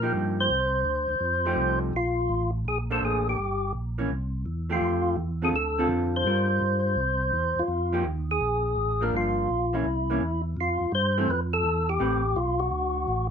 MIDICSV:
0, 0, Header, 1, 4, 480
1, 0, Start_track
1, 0, Tempo, 359281
1, 669, Time_signature, 4, 2, 24, 8
1, 17777, End_track
2, 0, Start_track
2, 0, Title_t, "Tonewheel organ"
2, 0, Program_c, 0, 16
2, 0, Note_on_c, 0, 70, 77
2, 169, Note_off_c, 0, 70, 0
2, 541, Note_on_c, 0, 72, 98
2, 2392, Note_off_c, 0, 72, 0
2, 2623, Note_on_c, 0, 65, 80
2, 3350, Note_off_c, 0, 65, 0
2, 3581, Note_on_c, 0, 68, 67
2, 3717, Note_off_c, 0, 68, 0
2, 3905, Note_on_c, 0, 69, 70
2, 4058, Note_off_c, 0, 69, 0
2, 4072, Note_on_c, 0, 68, 75
2, 4377, Note_off_c, 0, 68, 0
2, 4399, Note_on_c, 0, 67, 68
2, 4978, Note_off_c, 0, 67, 0
2, 6313, Note_on_c, 0, 65, 73
2, 6896, Note_off_c, 0, 65, 0
2, 7275, Note_on_c, 0, 68, 84
2, 7341, Note_off_c, 0, 68, 0
2, 7423, Note_on_c, 0, 69, 85
2, 7860, Note_off_c, 0, 69, 0
2, 8234, Note_on_c, 0, 72, 89
2, 10144, Note_on_c, 0, 65, 76
2, 10194, Note_off_c, 0, 72, 0
2, 10733, Note_off_c, 0, 65, 0
2, 11105, Note_on_c, 0, 68, 83
2, 12066, Note_on_c, 0, 70, 72
2, 12080, Note_off_c, 0, 68, 0
2, 12222, Note_off_c, 0, 70, 0
2, 12245, Note_on_c, 0, 65, 77
2, 13024, Note_on_c, 0, 64, 67
2, 13041, Note_off_c, 0, 65, 0
2, 13916, Note_off_c, 0, 64, 0
2, 14169, Note_on_c, 0, 65, 87
2, 14592, Note_off_c, 0, 65, 0
2, 14626, Note_on_c, 0, 72, 90
2, 15100, Note_on_c, 0, 71, 80
2, 15106, Note_off_c, 0, 72, 0
2, 15237, Note_off_c, 0, 71, 0
2, 15409, Note_on_c, 0, 69, 100
2, 15891, Note_on_c, 0, 67, 82
2, 15894, Note_off_c, 0, 69, 0
2, 16517, Note_on_c, 0, 65, 85
2, 16544, Note_off_c, 0, 67, 0
2, 16827, Note_on_c, 0, 66, 83
2, 16839, Note_off_c, 0, 65, 0
2, 17732, Note_off_c, 0, 66, 0
2, 17777, End_track
3, 0, Start_track
3, 0, Title_t, "Hollow-body jazz guitar"
3, 0, Program_c, 1, 26
3, 28, Note_on_c, 1, 53, 57
3, 30, Note_on_c, 1, 58, 54
3, 42, Note_on_c, 1, 63, 60
3, 44, Note_on_c, 1, 67, 59
3, 639, Note_off_c, 1, 53, 0
3, 640, Note_off_c, 1, 58, 0
3, 646, Note_off_c, 1, 63, 0
3, 647, Note_off_c, 1, 67, 0
3, 1944, Note_on_c, 1, 53, 61
3, 1944, Note_on_c, 1, 57, 61
3, 1957, Note_on_c, 1, 63, 64
3, 1960, Note_on_c, 1, 67, 76
3, 2559, Note_off_c, 1, 53, 0
3, 2559, Note_off_c, 1, 57, 0
3, 2565, Note_off_c, 1, 63, 0
3, 2567, Note_off_c, 1, 67, 0
3, 3881, Note_on_c, 1, 58, 60
3, 3886, Note_on_c, 1, 62, 50
3, 3889, Note_on_c, 1, 69, 63
3, 3897, Note_on_c, 1, 72, 56
3, 4489, Note_off_c, 1, 58, 0
3, 4491, Note_off_c, 1, 62, 0
3, 4493, Note_off_c, 1, 69, 0
3, 4497, Note_off_c, 1, 72, 0
3, 5319, Note_on_c, 1, 52, 55
3, 5324, Note_on_c, 1, 58, 59
3, 5334, Note_on_c, 1, 61, 61
3, 5465, Note_off_c, 1, 52, 0
3, 5468, Note_off_c, 1, 58, 0
3, 5472, Note_off_c, 1, 61, 0
3, 6272, Note_on_c, 1, 53, 58
3, 6278, Note_on_c, 1, 57, 66
3, 6292, Note_on_c, 1, 67, 70
3, 6886, Note_off_c, 1, 53, 0
3, 6889, Note_off_c, 1, 57, 0
3, 6896, Note_off_c, 1, 67, 0
3, 7239, Note_on_c, 1, 50, 51
3, 7245, Note_on_c, 1, 60, 56
3, 7249, Note_on_c, 1, 65, 50
3, 7257, Note_on_c, 1, 69, 61
3, 7386, Note_off_c, 1, 50, 0
3, 7389, Note_off_c, 1, 60, 0
3, 7392, Note_off_c, 1, 65, 0
3, 7395, Note_off_c, 1, 69, 0
3, 7727, Note_on_c, 1, 50, 59
3, 7731, Note_on_c, 1, 60, 65
3, 7737, Note_on_c, 1, 65, 62
3, 7738, Note_on_c, 1, 69, 66
3, 8335, Note_off_c, 1, 50, 0
3, 8337, Note_off_c, 1, 60, 0
3, 8340, Note_off_c, 1, 65, 0
3, 8340, Note_off_c, 1, 69, 0
3, 8367, Note_on_c, 1, 55, 37
3, 8371, Note_on_c, 1, 62, 42
3, 8377, Note_on_c, 1, 65, 45
3, 8378, Note_on_c, 1, 70, 46
3, 9326, Note_off_c, 1, 55, 0
3, 9328, Note_off_c, 1, 62, 0
3, 9330, Note_off_c, 1, 65, 0
3, 9331, Note_off_c, 1, 70, 0
3, 10588, Note_on_c, 1, 53, 61
3, 10597, Note_on_c, 1, 58, 58
3, 10599, Note_on_c, 1, 63, 57
3, 10607, Note_on_c, 1, 67, 68
3, 10742, Note_off_c, 1, 53, 0
3, 10747, Note_off_c, 1, 58, 0
3, 10747, Note_off_c, 1, 63, 0
3, 10752, Note_off_c, 1, 67, 0
3, 12035, Note_on_c, 1, 53, 55
3, 12050, Note_on_c, 1, 58, 67
3, 12059, Note_on_c, 1, 62, 61
3, 12649, Note_off_c, 1, 53, 0
3, 12656, Note_off_c, 1, 58, 0
3, 12661, Note_off_c, 1, 62, 0
3, 13001, Note_on_c, 1, 52, 60
3, 13012, Note_on_c, 1, 58, 65
3, 13023, Note_on_c, 1, 61, 67
3, 13148, Note_off_c, 1, 52, 0
3, 13154, Note_off_c, 1, 58, 0
3, 13159, Note_off_c, 1, 61, 0
3, 13491, Note_on_c, 1, 52, 59
3, 13499, Note_on_c, 1, 58, 70
3, 13510, Note_on_c, 1, 61, 63
3, 13633, Note_off_c, 1, 52, 0
3, 13637, Note_off_c, 1, 58, 0
3, 13642, Note_off_c, 1, 61, 0
3, 14930, Note_on_c, 1, 52, 73
3, 14935, Note_on_c, 1, 57, 80
3, 14945, Note_on_c, 1, 60, 67
3, 15071, Note_off_c, 1, 52, 0
3, 15073, Note_off_c, 1, 57, 0
3, 15079, Note_off_c, 1, 60, 0
3, 16028, Note_on_c, 1, 57, 54
3, 16034, Note_on_c, 1, 60, 49
3, 16041, Note_on_c, 1, 67, 52
3, 16045, Note_on_c, 1, 71, 54
3, 16314, Note_off_c, 1, 57, 0
3, 16318, Note_off_c, 1, 60, 0
3, 16321, Note_off_c, 1, 67, 0
3, 16323, Note_off_c, 1, 71, 0
3, 17777, End_track
4, 0, Start_track
4, 0, Title_t, "Tonewheel organ"
4, 0, Program_c, 2, 16
4, 0, Note_on_c, 2, 46, 76
4, 169, Note_off_c, 2, 46, 0
4, 182, Note_on_c, 2, 43, 67
4, 652, Note_off_c, 2, 43, 0
4, 661, Note_on_c, 2, 36, 71
4, 1132, Note_off_c, 2, 36, 0
4, 1137, Note_on_c, 2, 38, 78
4, 1436, Note_off_c, 2, 38, 0
4, 1455, Note_on_c, 2, 38, 33
4, 1541, Note_off_c, 2, 38, 0
4, 1608, Note_on_c, 2, 41, 73
4, 2086, Note_off_c, 2, 41, 0
4, 2091, Note_on_c, 2, 36, 76
4, 2568, Note_off_c, 2, 36, 0
4, 2583, Note_on_c, 2, 34, 74
4, 3054, Note_off_c, 2, 34, 0
4, 3061, Note_on_c, 2, 33, 85
4, 3534, Note_off_c, 2, 33, 0
4, 3543, Note_on_c, 2, 34, 81
4, 4015, Note_off_c, 2, 34, 0
4, 4025, Note_on_c, 2, 33, 71
4, 4497, Note_off_c, 2, 33, 0
4, 4512, Note_on_c, 2, 31, 71
4, 4981, Note_off_c, 2, 31, 0
4, 4991, Note_on_c, 2, 34, 76
4, 5460, Note_off_c, 2, 34, 0
4, 5463, Note_on_c, 2, 36, 71
4, 5937, Note_off_c, 2, 36, 0
4, 5953, Note_on_c, 2, 40, 73
4, 6422, Note_off_c, 2, 40, 0
4, 6425, Note_on_c, 2, 41, 76
4, 6899, Note_off_c, 2, 41, 0
4, 6908, Note_on_c, 2, 40, 76
4, 7380, Note_off_c, 2, 40, 0
4, 7385, Note_on_c, 2, 38, 67
4, 7855, Note_on_c, 2, 41, 76
4, 7859, Note_off_c, 2, 38, 0
4, 8334, Note_off_c, 2, 41, 0
4, 8336, Note_on_c, 2, 43, 80
4, 8815, Note_off_c, 2, 43, 0
4, 8833, Note_on_c, 2, 43, 79
4, 9299, Note_on_c, 2, 36, 80
4, 9304, Note_off_c, 2, 43, 0
4, 9776, Note_off_c, 2, 36, 0
4, 9791, Note_on_c, 2, 40, 80
4, 10081, Note_off_c, 2, 40, 0
4, 10097, Note_on_c, 2, 40, 36
4, 10185, Note_off_c, 2, 40, 0
4, 10262, Note_on_c, 2, 41, 78
4, 10738, Note_off_c, 2, 41, 0
4, 10748, Note_on_c, 2, 39, 81
4, 11221, Note_off_c, 2, 39, 0
4, 11232, Note_on_c, 2, 34, 78
4, 11703, Note_off_c, 2, 34, 0
4, 11704, Note_on_c, 2, 33, 77
4, 12179, Note_off_c, 2, 33, 0
4, 12192, Note_on_c, 2, 31, 82
4, 12663, Note_off_c, 2, 31, 0
4, 12679, Note_on_c, 2, 34, 74
4, 13146, Note_off_c, 2, 34, 0
4, 13157, Note_on_c, 2, 36, 70
4, 13625, Note_off_c, 2, 36, 0
4, 13636, Note_on_c, 2, 40, 78
4, 14104, Note_off_c, 2, 40, 0
4, 14116, Note_on_c, 2, 41, 76
4, 14410, Note_off_c, 2, 41, 0
4, 14434, Note_on_c, 2, 41, 35
4, 14517, Note_off_c, 2, 41, 0
4, 14587, Note_on_c, 2, 43, 85
4, 15058, Note_off_c, 2, 43, 0
4, 15081, Note_on_c, 2, 41, 76
4, 15545, Note_off_c, 2, 41, 0
4, 15548, Note_on_c, 2, 40, 85
4, 16017, Note_off_c, 2, 40, 0
4, 16032, Note_on_c, 2, 33, 77
4, 16499, Note_off_c, 2, 33, 0
4, 16507, Note_on_c, 2, 35, 85
4, 16975, Note_off_c, 2, 35, 0
4, 16980, Note_on_c, 2, 38, 77
4, 17451, Note_off_c, 2, 38, 0
4, 17470, Note_on_c, 2, 33, 83
4, 17777, Note_off_c, 2, 33, 0
4, 17777, End_track
0, 0, End_of_file